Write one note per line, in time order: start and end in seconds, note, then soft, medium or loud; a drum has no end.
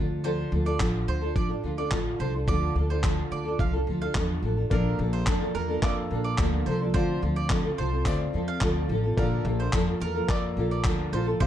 0.00 0.42 D2 medium
0.00 0.23 F3 medium
0.00 0.24 D4 medium
0.00 0.24 F4 medium
0.00 0.24 A4 medium
0.24 0.52 D3 medium
0.24 0.50 F3 medium
0.24 0.51 D4 medium
0.24 0.52 F4 medium
0.24 0.52 A4 medium
0.24 0.51 C5 medium
0.51 0.75 D2 medium
0.51 0.66 F3 medium
0.51 0.66 D4 medium
0.51 0.66 F4 medium
0.51 0.64 A4 medium
0.65 0.79 D4 medium
0.65 0.80 F4 medium
0.65 0.80 A4 medium
0.65 0.80 D5 medium
0.79 1.03 A1 medium
0.79 1.22 D3 medium
0.79 1.22 F3 medium
0.79 1.22 D4 medium
0.79 1.21 F4 medium
0.79 1.20 A4 medium
0.79 kick loud
0.79 clap loud
1.07 1.31 D2 medium
1.07 1.35 C5 medium
1.21 1.35 D4 soft
1.21 1.35 F4 soft
1.21 1.36 A4 medium
1.35 1.59 A1 medium
1.35 1.50 F3 medium
1.35 1.50 D4 medium
1.35 1.49 F4 medium
1.35 1.48 A4 medium
1.35 1.49 D5 medium
1.35 kick loud
1.49 1.63 D4 soft
1.49 1.64 F4 medium
1.49 1.63 A4 medium
1.63 1.87 D2 medium
1.63 1.78 F3 medium
1.63 1.78 D4 medium
1.63 1.78 F4 medium
1.63 1.76 A4 medium
1.77 1.91 D4 soft
1.77 1.91 F4 soft
1.77 1.92 A4 medium
1.77 1.91 D5 medium
1.91 2.15 A1 medium
1.91 2.20 D3 medium
1.91 2.18 F3 medium
1.91 2.19 D4 medium
1.91 2.20 F4 medium
1.91 2.20 A4 medium
1.91 kick loud
1.91 clap loud
2.19 2.43 C2 medium
2.19 2.33 F3 medium
2.19 2.34 D4 medium
2.19 2.33 F4 medium
2.19 2.32 A4 medium
2.19 2.33 C5 medium
2.34 2.47 D4 soft
2.34 2.47 F4 soft
2.34 2.48 A4 soft
2.47 2.71 D2 loud
2.47 2.75 D3 medium
2.47 2.74 F3 medium
2.47 2.75 D4 medium
2.47 2.76 F4 medium
2.47 2.76 A4 medium
2.47 2.75 D5 loud
2.47 kick loud
2.75 3.21 D2 medium
2.75 2.89 F3 medium
2.75 2.90 D4 medium
2.75 2.90 F4 medium
2.75 2.88 A4 medium
2.89 3.03 D4 soft
2.89 3.04 F4 medium
2.89 3.04 A4 medium
2.89 3.03 C5 medium
3.03 3.46 D3 medium
3.03 3.46 F3 medium
3.03 3.46 D4 medium
3.03 3.45 F4 medium
3.03 3.44 A4 medium
3.03 kick loud
3.03 clap loud
3.31 3.54 D2 medium
3.31 3.58 D5 medium
3.45 3.58 D4 soft
3.45 3.59 F4 soft
3.45 3.59 A4 medium
3.59 3.82 C2 medium
3.59 3.73 F3 medium
3.59 3.74 D4 medium
3.59 3.73 F4 medium
3.59 3.72 A4 medium
3.59 3.73 F5 medium
3.59 kick medium
3.73 3.87 D4 soft
3.73 3.88 F4 soft
3.73 3.87 A4 medium
3.87 4.10 D2 medium
3.87 4.01 F3 medium
3.87 4.02 D4 medium
3.87 4.01 F4 medium
3.87 4.00 A4 medium
4.01 4.15 D4 soft
4.01 4.16 F4 medium
4.01 4.15 A4 medium
4.01 4.15 F5 medium
4.15 4.38 E2 medium
4.15 4.43 D3 medium
4.15 4.42 F3 medium
4.15 4.43 D4 medium
4.15 4.44 F4 medium
4.15 4.44 A4 medium
4.15 kick loud
4.15 clap loud
4.42 4.66 A1 medium
4.42 4.57 F3 medium
4.42 4.58 D4 medium
4.42 4.57 F4 medium
4.42 4.56 A4 medium
4.57 4.71 D4 soft
4.57 4.72 F4 soft
4.57 4.71 A4 soft
4.70 4.94 A#1 medium
4.70 4.99 A#2 medium
4.70 4.99 D3 medium
4.70 4.97 F3 medium
4.70 5.73 A#3 medium
4.70 4.99 A#3 medium
4.70 4.99 D4 medium
4.70 5.73 A4 medium
4.70 5.00 A4 medium
4.70 4.98 A#4 medium
4.70 5.74 D5 medium
4.70 kick loud
4.99 5.22 A#1 medium
4.99 5.26 F3 medium
4.99 5.27 A#3 medium
4.99 5.27 D4 medium
4.99 5.27 A4 medium
5.13 5.26 C5 medium
5.27 5.50 F2 medium
5.27 5.41 A#2 medium
5.27 5.41 D3 medium
5.27 5.41 F3 medium
5.27 5.41 A#3 medium
5.27 5.41 D4 medium
5.27 5.39 A4 medium
5.27 kick loud
5.27 clap loud
5.41 5.53 F3 soft
5.41 5.54 A#3 soft
5.41 5.55 D4 soft
5.41 5.55 A4 medium
5.55 5.78 E2 medium
5.55 5.69 F3 medium
5.55 5.69 A#3 medium
5.55 5.68 D4 medium
5.55 5.67 A4 medium
5.55 5.81 A#4 medium
5.68 6.09 F3 medium
5.68 6.10 A#3 soft
5.68 6.11 D4 soft
5.68 6.10 A4 medium
5.82 6.06 F2 medium
5.82 6.84 A#3 medium
5.82 6.85 A4 medium
5.82 5.96 D5 medium
5.82 6.86 F5 medium
5.82 kick loud
5.82 clap medium
6.10 6.34 A#1 medium
6.10 6.38 F3 medium
6.10 6.38 A#3 medium
6.10 6.38 D4 medium
6.10 6.39 A4 medium
6.24 6.38 D5 medium
6.38 6.61 D2 medium
6.38 6.66 A#2 medium
6.38 6.67 D3 medium
6.38 6.65 F3 medium
6.38 6.66 A#3 medium
6.38 6.67 D4 medium
6.38 6.67 A4 medium
6.38 kick loud
6.38 clap medium
6.66 6.89 C2 medium
6.66 6.80 F3 medium
6.66 6.81 A#3 medium
6.66 6.80 D4 medium
6.66 6.79 A4 medium
6.66 6.80 C5 medium
6.80 6.94 F3 soft
6.80 6.95 A#3 soft
6.80 6.95 D4 soft
6.80 6.94 A4 soft
6.94 7.17 D2 loud
6.94 7.22 D3 medium
6.94 7.21 F3 medium
6.94 7.96 C4 medium
6.94 7.22 C4 medium
6.94 7.97 F4 medium
6.94 7.22 F4 loud
6.94 7.23 A4 medium
6.94 7.21 C5 loud
6.94 7.97 D5 medium
6.94 kick loud
7.22 7.68 D2 medium
7.22 7.49 F3 medium
7.22 7.49 C4 medium
7.22 7.49 F4 medium
7.22 7.50 A4 medium
7.36 7.49 D5 medium
7.49 7.64 D3 medium
7.49 7.64 F3 medium
7.49 7.64 C4 medium
7.49 7.64 F4 medium
7.49 7.62 A4 medium
7.49 kick loud
7.49 clap loud
7.63 7.77 C4 soft
7.63 7.78 F4 soft
7.63 7.78 A4 medium
7.77 8.01 C2 medium
7.77 7.91 F3 medium
7.77 7.92 C4 medium
7.77 7.91 F4 medium
7.77 7.89 A4 medium
7.77 8.06 C5 medium
7.91 8.33 C4 soft
7.91 8.34 F4 medium
7.91 8.33 A4 medium
8.05 8.28 D2 loud
8.05 9.07 C4 medium
8.05 9.08 F4 medium
8.05 8.19 D5 medium
8.05 9.08 D5 medium
8.05 kick loud
8.05 clap medium
8.33 8.57 E2 medium
8.33 8.61 F3 medium
8.33 8.61 C4 medium
8.33 8.62 F4 medium
8.33 8.62 A4 medium
8.48 8.61 F5 medium
8.61 8.84 D2 medium
8.61 8.89 D3 medium
8.61 8.88 F3 medium
8.61 8.89 C4 medium
8.61 8.90 F4 medium
8.61 8.90 A4 loud
8.61 kick loud
8.61 clap medium
8.89 9.12 A1 medium
8.89 9.03 F3 medium
8.89 9.04 C4 medium
8.89 9.04 F4 medium
8.89 9.02 A4 medium
9.04 9.18 C4 soft
9.04 9.18 F4 medium
9.04 9.17 A4 medium
9.17 9.40 A#1 medium
9.17 9.45 A#2 medium
9.17 9.45 D3 medium
9.17 9.44 F3 medium
9.17 10.19 A#3 medium
9.17 9.45 A#3 medium
9.17 9.46 F4 loud
9.17 10.20 A4 medium
9.17 9.46 A4 medium
9.17 9.44 A#4 medium
9.17 10.20 D5 medium
9.17 kick loud
9.45 9.68 A#1 loud
9.45 9.73 F3 medium
9.45 9.73 A#3 medium
9.45 9.73 F4 medium
9.45 9.74 A4 medium
9.60 9.73 C5 medium
9.73 9.96 F2 medium
9.73 9.87 A#2 medium
9.73 9.87 D3 medium
9.73 9.88 F3 medium
9.73 9.87 A#3 medium
9.73 9.87 F4 medium
9.73 9.86 A4 medium
9.73 kick loud
9.73 clap loud
9.87 10.00 F3 soft
9.87 10.01 A#3 soft
9.87 10.01 F4 soft
9.87 10.01 A4 medium
10.00 10.24 E2 medium
10.00 10.15 F3 medium
10.00 10.16 A#3 medium
10.00 10.15 F4 medium
10.00 10.14 A4 medium
10.00 10.28 A#4 medium
10.15 10.56 F3 soft
10.15 10.57 A#3 soft
10.15 10.57 F4 medium
10.15 10.57 A4 medium
10.28 10.52 F2 medium
10.28 11.30 A#3 medium
10.28 11.31 A4 medium
10.28 10.42 D5 medium
10.28 11.31 D5 medium
10.28 kick loud
10.28 clap medium
10.57 10.80 A#1 medium
10.57 10.84 F3 medium
10.57 10.84 A#3 medium
10.57 10.85 F4 medium
10.57 10.85 A4 medium
10.71 10.84 D5 medium
10.84 11.07 D2 medium
10.84 11.12 A#2 medium
10.84 11.13 D3 medium
10.84 11.11 F3 medium
10.84 11.12 A#3 medium
10.84 11.13 F4 medium
10.84 11.13 A4 medium
10.84 kick loud
10.84 clap loud
11.12 11.35 A#1 medium
11.12 11.26 F3 medium
11.12 11.27 A#3 medium
11.12 11.26 F4 medium
11.12 11.25 A4 medium
11.12 11.26 C5 medium
11.26 11.40 F3 soft
11.26 11.41 A#3 soft
11.26 11.41 F4 medium
11.26 11.40 A4 medium
11.40 11.47 C2 loud
11.40 11.47 C3 medium
11.40 11.47 F3 medium
11.40 11.47 C4 medium
11.40 11.47 F4 loud
11.40 11.47 G4 medium
11.40 11.47 C5 loud
11.40 11.47 F5 medium
11.40 kick loud